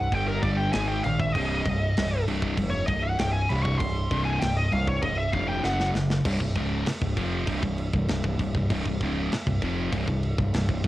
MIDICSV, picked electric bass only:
0, 0, Header, 1, 3, 480
1, 0, Start_track
1, 0, Tempo, 612245
1, 1058, Time_signature, 4, 2, 24, 8
1, 8526, End_track
2, 0, Start_track
2, 0, Title_t, "Picked electric bass"
2, 0, Program_c, 0, 34
2, 95, Note_on_c, 0, 31, 111
2, 300, Note_off_c, 0, 31, 0
2, 332, Note_on_c, 0, 31, 101
2, 539, Note_off_c, 0, 31, 0
2, 586, Note_on_c, 0, 32, 84
2, 786, Note_off_c, 0, 32, 0
2, 826, Note_on_c, 0, 34, 89
2, 1027, Note_off_c, 0, 34, 0
2, 1057, Note_on_c, 0, 24, 114
2, 1262, Note_off_c, 0, 24, 0
2, 1298, Note_on_c, 0, 24, 98
2, 1502, Note_off_c, 0, 24, 0
2, 1548, Note_on_c, 0, 24, 91
2, 1748, Note_off_c, 0, 24, 0
2, 1787, Note_on_c, 0, 24, 88
2, 1988, Note_off_c, 0, 24, 0
2, 2020, Note_on_c, 0, 29, 106
2, 2224, Note_off_c, 0, 29, 0
2, 2263, Note_on_c, 0, 24, 89
2, 2465, Note_off_c, 0, 24, 0
2, 2503, Note_on_c, 0, 24, 89
2, 2705, Note_off_c, 0, 24, 0
2, 2754, Note_on_c, 0, 24, 98
2, 2952, Note_off_c, 0, 24, 0
2, 2986, Note_on_c, 0, 24, 104
2, 3187, Note_off_c, 0, 24, 0
2, 3223, Note_on_c, 0, 24, 89
2, 3426, Note_off_c, 0, 24, 0
2, 3467, Note_on_c, 0, 24, 92
2, 3668, Note_off_c, 0, 24, 0
2, 3708, Note_on_c, 0, 36, 91
2, 3909, Note_off_c, 0, 36, 0
2, 3942, Note_on_c, 0, 24, 108
2, 4145, Note_off_c, 0, 24, 0
2, 4182, Note_on_c, 0, 29, 96
2, 4385, Note_off_c, 0, 29, 0
2, 4419, Note_on_c, 0, 30, 97
2, 4623, Note_off_c, 0, 30, 0
2, 4651, Note_on_c, 0, 30, 86
2, 4858, Note_off_c, 0, 30, 0
2, 4903, Note_on_c, 0, 24, 108
2, 5013, Note_off_c, 0, 24, 0
2, 5020, Note_on_c, 0, 24, 80
2, 5131, Note_off_c, 0, 24, 0
2, 5140, Note_on_c, 0, 25, 96
2, 5363, Note_off_c, 0, 25, 0
2, 5502, Note_on_c, 0, 24, 81
2, 5612, Note_off_c, 0, 24, 0
2, 5621, Note_on_c, 0, 29, 84
2, 5843, Note_off_c, 0, 29, 0
2, 5856, Note_on_c, 0, 24, 97
2, 5969, Note_off_c, 0, 24, 0
2, 5981, Note_on_c, 0, 24, 80
2, 6203, Note_off_c, 0, 24, 0
2, 6224, Note_on_c, 0, 24, 84
2, 6333, Note_off_c, 0, 24, 0
2, 6341, Note_on_c, 0, 24, 81
2, 6451, Note_off_c, 0, 24, 0
2, 6457, Note_on_c, 0, 24, 92
2, 6569, Note_off_c, 0, 24, 0
2, 6581, Note_on_c, 0, 24, 73
2, 6691, Note_off_c, 0, 24, 0
2, 6701, Note_on_c, 0, 24, 72
2, 6812, Note_off_c, 0, 24, 0
2, 6820, Note_on_c, 0, 24, 111
2, 6931, Note_off_c, 0, 24, 0
2, 6940, Note_on_c, 0, 24, 81
2, 7051, Note_off_c, 0, 24, 0
2, 7059, Note_on_c, 0, 25, 100
2, 7282, Note_off_c, 0, 25, 0
2, 7424, Note_on_c, 0, 24, 89
2, 7533, Note_off_c, 0, 24, 0
2, 7542, Note_on_c, 0, 29, 95
2, 7764, Note_off_c, 0, 29, 0
2, 7779, Note_on_c, 0, 24, 101
2, 7891, Note_off_c, 0, 24, 0
2, 7900, Note_on_c, 0, 24, 84
2, 8123, Note_off_c, 0, 24, 0
2, 8145, Note_on_c, 0, 24, 85
2, 8254, Note_off_c, 0, 24, 0
2, 8258, Note_on_c, 0, 24, 94
2, 8370, Note_off_c, 0, 24, 0
2, 8382, Note_on_c, 0, 24, 90
2, 8493, Note_off_c, 0, 24, 0
2, 8498, Note_on_c, 0, 24, 83
2, 8526, Note_off_c, 0, 24, 0
2, 8526, End_track
3, 0, Start_track
3, 0, Title_t, "Muted picked electric bass strokes"
3, 5381, Note_on_c, 9, 29, 40
3, 5460, Note_off_c, 9, 29, 0
3, 7311, Note_on_c, 9, 29, 39
3, 7389, Note_off_c, 9, 29, 0
3, 8526, End_track
0, 0, End_of_file